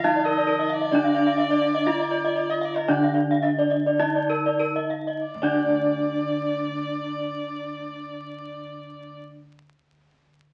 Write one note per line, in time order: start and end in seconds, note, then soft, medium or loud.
0.00 1.83 D3 medium
0.00 0.92 F3 medium
0.00 0.15 D#5 medium
0.00 0.26 F5 medium
0.04 0.92 D#4 loud
0.04 0.13 D#4 soft
0.16 0.26 D5 medium
0.25 0.36 A#4 medium
0.25 0.75 D#5 medium
0.38 0.48 D5 medium
0.47 0.58 A#4 medium
0.59 0.70 D#5 medium
0.70 2.52 D5 loud
0.70 0.81 F5 medium
0.81 0.92 D#5 medium
0.91 2.88 D3 medium
0.91 3.97 D4 medium
0.91 1.88 D4 medium
0.91 1.03 D5 medium
1.04 1.15 F5 medium
1.15 1.27 D5 medium
1.27 1.39 F5 medium
1.38 1.50 D#5 medium
1.50 1.62 D5 medium
1.62 1.74 F5 medium
1.75 1.87 D#5 medium
1.86 1.95 D#4 soft
1.86 2.89 F4 medium
1.86 1.99 F5 medium
2.00 2.12 D#5 medium
2.11 2.24 D5 medium
2.25 2.37 D#5 medium
2.36 2.49 D5 medium
2.50 2.63 D#5 medium
2.50 2.66 D#5 medium
2.62 2.79 D5 medium
2.62 2.75 F5 medium
2.76 2.92 A#4 medium
2.76 2.89 D#5 medium
2.88 5.23 D3 medium
2.88 6.48 D3 medium
2.88 4.00 D4 medium
2.88 3.02 D5 medium
2.88 3.05 D5 medium
3.03 3.16 F5 medium
3.15 3.29 D5 medium
3.31 3.44 F5 medium
3.43 3.57 D#5 medium
3.58 3.72 D5 medium
3.70 3.85 D#5 medium
3.86 4.01 D5 medium
3.99 5.22 D#4 medium
3.99 4.09 D#4 soft
3.99 4.15 D#5 medium
4.16 4.30 D5 medium
4.30 4.45 A#4 medium
4.46 4.61 D5 medium
4.59 4.75 A#4 medium
4.76 4.91 D#5 medium
4.90 5.06 F5 medium
5.07 5.23 D#5 medium
5.23 9.20 D5 medium
5.35 9.32 D2 medium
5.42 9.40 D3 medium
5.42 9.40 D4 medium
5.42 9.39 D5 medium
5.42 9.40 D5 medium